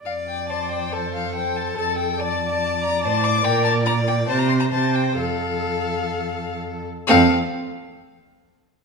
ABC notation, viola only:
X:1
M:4/4
L:1/8
Q:1/4=138
K:F
V:1 name="Viola"
d4 c2 c2 | A2 d6- | d4 c2 c2 | A6- A z |
C z6 z |]